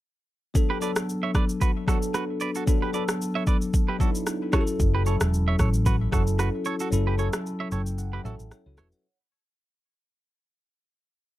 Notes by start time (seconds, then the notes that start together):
0.54 F#3 B3 D4 A4, kick, shaker
0.70 G4 B4
0.81 F#3 B3 D4 A4 B4 D5, shaker
0.96 cross-stick, shaker
1.09 shaker
1.23 C#5 E5
1.34 B4 D5, kick, cross-stick, shaker
1.49 shaker
1.61 F#4 B4, kick, shaker
1.87 F#3 B3 D4 F#4 A4, kick, cross-stick, shaker
2.02 shaker
2.14 F#4 B4, cross-stick, shaker
2.40 B4 D5, shaker
2.55 F#4 A4, shaker
2.66 F#3 B3 D4 A4, kick, shaker
2.82 G4 B4
2.93 F#3 B3 D4 A4 B4 D5, shaker
3.08 cross-stick, shaker
3.22 shaker
3.35 C#5 E5
3.47 B4 D5, kick, shaker
3.61 shaker
3.74 kick, shaker
3.88 G4 B4
3.99 F#3 B3 D4 D#4 F#4 A4, kick, shaker
4.08 E4
4.15 shaker
4.27 cross-stick, shaker
4.52 F#3 C#4 E4 G4 A4 C#5, kick, cross-stick, shaker
4.61 A4
4.67 shaker
4.80 F#1, kick, shaker
4.95 G4 B4
5.05 F#3 C#4 E4 A4 C#5, shaker
5.20 E1, cross-stick, shaker
5.34 shaker
5.48 C#5 E5
5.59 A1 A4 C#5, kick, cross-stick, shaker
5.74 shaker
5.86 F#4 B4, kick, shaker
6.11 F#1 F#3 C#4 E4 F#4 A4, kick, cross-stick, shaker
6.27 shaker
6.39 F#4 B4, cross-stick, shaker
6.65 A4 C#5, shaker
6.80 F#4 A4, shaker
6.91 F#1 F#3 C#4 E4 A4, shaker
7.07 G4 B4
7.17 F#3 C#4 E4 A4 C#5, shaker
7.33 cross-stick, shaker
7.46 shaker
7.60 C#5 E5
7.71 F#1 A4 C#5 G5, shaker
7.86 shaker
7.98 F#5, shaker
8.13 G4 B4
8.24 A1 F#3 C#4 E4 F#4 A4 E5, shaker
8.39 A1, shaker
8.51 C#5, cross-stick, shaker
8.66 C#2 F#4 C#5
8.77 A4 B4 C#5 E5, cross-stick, shaker
8.92 C#5 F#5, shaker